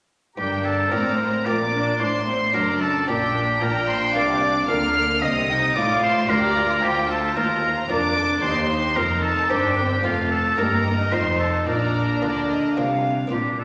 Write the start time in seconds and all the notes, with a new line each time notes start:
0.37 G1 G2 D4 G4 A#4 G5
0.65 A4 A5
0.91 A1 A2 A#3 C4 D4 G4 A#4 D5 A#5
1.19 C5
1.45 A#1 A#2 A#3 D4 G4 A#4 D5 D6
1.73 D4
2.00 A1 A2 D4 C5 C6
2.27 C4
2.54 F#1 F#2 A3 D4 F#4 A#4 D5 A#5
2.81 A4 A5
3.08 A#1 A#2 D4 G4 A#4 G5
3.61 A#1 A#2 D4 A#4 G5 A#5
3.88 C5 C6
4.14 C2 C3 F4 A#4 D5 F5 D6
4.42 D5
4.68 D2 D3 A#3 F4 A#4 F5 F6
4.96 A#3 D5
5.22 C2 C3 C4 D#5 D#6
5.49 D#4 G5
5.75 A1 A2 F4 A4 D5 F5 D6
6.03 C5 C6
6.29 D2 F4 G4 A#4 D5 A#5
6.56 F4
6.82 D2 F4 G4 C5 G5
7.09 A4 A5
7.36 D#2 F4 A#4 A#5
7.89 F1 F2 D4 F4 A#4 D5 D6
8.16 A4
8.42 D#2 D#4 G4 C5 C6
8.69 D#4
8.96 F1 F2 C4 G4 A#4 A#5
9.22 A4 A5
9.49 G1 G2 C4 D4 G4 A#4 C5 G5
9.77 C4 A#4
10.04 F1 F2 A3 C4 F4 A4 F5
10.31 A4 A5
10.57 G1 G2 A#3 D#4 G4 A#4 A#5
10.85 D#4 D#5
11.12 F1 F2 A3 C4 F4 C5 C6
11.39 A4 A5
11.66 A#1 A#2 D4 A#4 D5 A#5
12.22 D2 D3 A#3 D4 F4 D5
12.50 D#5
12.77 C2 C3 A#3 D4 F4 F5
13.27 A#3 D4 F4 A#5
13.31 A#2 D4 F4 G4
13.59 D4 F4 A4 A#5